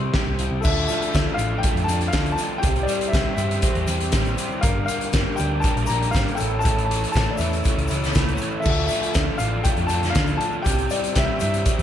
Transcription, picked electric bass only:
0.00 0.10 C3 medium
0.26 0.48 C2 medium
0.51 0.62 C2 medium
0.65 0.86 D2 loud
1.15 1.25 D2 medium
1.38 1.60 A1 medium
1.75 1.86 F2 medium
1.87 2.09 F2 medium
2.13 2.35 D2 medium
2.64 2.85 C2 loud
3.14 3.24 C2 medium
3.37 3.59 G2 medium
3.75 3.86 E2 medium
3.87 4.09 E2 medium
4.13 4.34 A1 medium
4.63 4.85 G1 loud
5.13 5.24 G1 medium
5.40 5.61 D2 medium
5.75 5.86 A#1 medium
5.90 6.11 A#1 medium
6.14 6.25 G#1 medium
6.41 7.04 A1 medium
7.16 7.25 A1 medium
7.39 7.60 E2 medium
7.77 7.87 C#2 medium
7.91 8.11 C#2 medium
8.16 8.36 C#2 medium
8.66 8.87 D2 loud
9.16 9.26 D2 medium
9.40 9.61 A1 medium
9.77 9.88 F2 medium
9.89 10.11 F2 medium
10.16 10.37 D2 medium
10.66 10.87 C2 loud
11.17 11.27 C2 medium
11.42 11.63 G2 medium
11.79 11.83 E2 medium

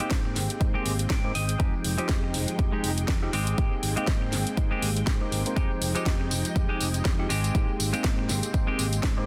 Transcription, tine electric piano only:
0.00 0.58 G#3 medium
0.00 0.58 A#3 medium
0.00 0.58 C4 medium
0.00 0.59 D#4 medium
0.00 0.59 G4 medium
0.60 1.20 G#3 medium
0.60 1.21 A#3 medium
0.60 1.21 C4 medium
0.60 1.21 D#4 medium
0.60 1.21 G4 medium
1.24 1.31 G#3 loud
1.24 1.32 A#3 medium
1.24 1.32 C4 medium
1.24 1.32 D#4 medium
1.24 1.32 G4 loud
1.59 1.95 F3 medium
1.59 1.95 G#3 medium
1.59 1.95 C4 medium
1.59 1.95 D#4 medium
1.59 1.95 G4 loud
1.98 2.56 F3 medium
1.98 2.56 G#3 medium
1.98 2.56 C4 medium
1.98 2.57 D#4 medium
1.98 2.57 G4 medium
2.58 3.19 F3 medium
2.58 3.19 G#3 medium
2.58 3.19 C4 medium
2.58 3.19 D#4 medium
2.58 3.20 G4 medium
3.22 3.30 F3 loud
3.22 3.30 G#3 medium
3.22 3.30 C4 medium
3.22 3.30 D#4 medium
3.22 3.30 G4 loud
3.58 3.93 G#3 medium
3.58 3.94 A#3 medium
3.58 3.94 C4 medium
3.58 3.94 D#4 medium
3.58 3.94 G4 medium
3.96 4.55 G#3 medium
3.96 4.55 A#3 medium
3.96 4.55 C4 medium
3.96 4.55 D#4 medium
3.96 4.55 G5 medium
4.57 5.17 G#3 medium
4.57 5.18 A#3 medium
4.57 5.18 C4 medium
4.57 5.18 D#4 medium
4.57 5.18 G4 medium
5.21 5.42 G#3 medium
5.21 5.42 A#3 medium
5.21 5.43 C4 medium
5.21 5.43 D#4 medium
5.21 5.43 G4 loud
5.46 5.54 G#3 medium
5.46 5.54 A#3 medium
5.46 5.54 C4 medium
5.46 5.54 D#4 medium
5.46 5.54 F4 medium
5.57 5.92 F3 medium
5.57 5.92 G#3 medium
5.57 5.92 C4 medium
5.57 5.92 D#4 medium
5.57 5.92 G4 medium
5.95 6.53 F3 medium
5.95 6.53 G#3 medium
5.95 6.53 C4 medium
5.95 6.53 D#4 medium
5.95 6.54 G4 medium
6.55 7.16 F3 medium
6.55 7.16 G#3 medium
6.55 7.16 C4 medium
6.55 7.16 D#4 medium
6.55 7.16 G4 medium
7.19 7.26 F3 loud
7.19 7.26 G#3 medium
7.19 7.26 C4 medium
7.19 7.27 D#4 medium
7.19 7.27 G4 loud
7.54 7.90 G#3 medium
7.54 7.90 A#3 medium
7.54 7.90 C4 medium
7.54 7.90 D#4 medium
7.54 7.90 G4 medium
7.93 8.51 G#3 medium
7.93 8.51 A#3 medium
7.93 8.51 C4 medium
7.93 8.52 D#4 medium
7.93 8.52 G4 medium
8.53 9.14 G#3 medium
8.53 9.14 A#3 medium
8.53 9.14 C4 medium
8.53 9.14 D#4 medium
8.53 9.15 G4 medium
9.17 9.25 G#3 loud
9.17 9.25 A#3 medium
9.17 9.25 C4 medium
9.17 9.25 D#4 medium
9.17 9.25 G4 loud

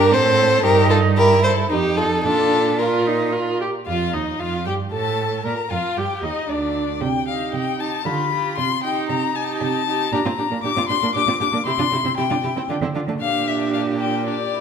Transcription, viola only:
0.00 0.13 D4 medium
0.12 0.64 C4 medium
0.64 1.18 D#4 medium
1.17 1.70 E4 medium
1.71 2.26 D#4 medium
2.25 2.78 D4 medium
2.79 3.08 F4 medium
3.07 3.34 D#4 medium
3.33 3.60 F4 medium
3.61 3.69 G4 medium
3.87 4.15 F4 medium
4.14 4.41 D#4 soft
4.40 4.66 F4 medium
4.67 4.75 G4 soft
4.93 5.44 A4 medium
5.45 5.53 A#4 medium
5.71 5.99 F4 medium
5.97 6.25 G4 soft
6.24 6.48 D#4 soft
6.49 7.00 D4 soft
7.28 7.78 D#4 soft
7.79 8.05 D#4 soft
8.05 8.31 F4 soft
8.32 8.57 F4 soft
8.83 9.34 D#4 soft
9.35 9.86 D#4 soft
9.87 10.12 D#4 soft
10.13 10.18 D4 medium
10.26 10.31 C4 soft
10.39 10.44 D4 soft
10.51 10.56 A#3 soft
10.64 10.69 D4 medium
10.76 10.82 C4 soft
10.89 10.94 D4 soft
11.03 11.08 A#3 soft
11.15 11.20 D4 medium
11.28 11.33 C4 soft
11.41 11.46 D4 soft
11.53 11.58 A#3 soft
11.66 11.71 E4 medium
11.79 11.84 D4 soft
11.93 11.98 E4 soft
12.05 12.10 C4 soft
12.17 12.23 E4 medium
12.31 12.36 D4 soft
12.44 12.49 E4 soft
12.57 12.62 C4 soft
12.69 12.74 D4 medium
12.82 12.87 C4 soft
12.95 13.00 D4 soft
13.08 13.13 A3 soft
13.20 14.22 D4 soft
14.26 14.34 D4 soft
14.53 14.61 E4 soft

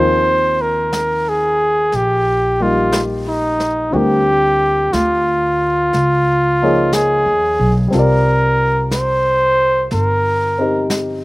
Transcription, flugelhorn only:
0.00 0.63 C5 medium
0.62 1.30 A#4 medium
1.29 1.97 G#4 medium
1.96 2.64 G4 medium
2.62 3.03 F4 medium
3.28 3.95 D#4 medium
3.93 3.96 F#4 medium
3.93 4.95 G4 medium
4.93 6.95 F4 medium
6.94 7.76 G#4 medium
7.92 8.88 A#4 medium
8.93 9.87 C5 medium
9.93 10.87 A#4 medium

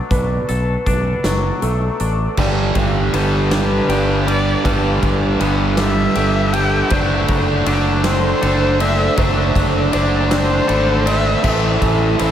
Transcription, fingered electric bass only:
0.11 0.37 B1 medium
0.49 0.75 B1 medium
0.87 1.13 B1 medium
1.24 1.50 F#1 medium
1.62 1.88 B1 medium
2.00 2.26 A1 medium
2.38 2.71 G1 medium
2.76 3.09 G1 medium
3.14 3.79 G1 medium
3.88 4.54 G1 medium
4.66 4.98 G1 medium
5.03 5.36 G1 medium
5.41 6.06 G1 medium
6.16 6.81 G1 medium
6.91 7.24 F#1 medium
7.29 7.62 F#1 medium
7.67 8.32 F#1 medium
8.43 9.08 F#1 medium
9.18 9.51 F#1 medium
9.55 9.88 F#1 medium
9.95 10.59 F#1 medium
10.69 11.34 G#1 medium
11.45 11.77 A1 medium
11.82 12.14 A1 medium
12.20 12.31 A1 medium

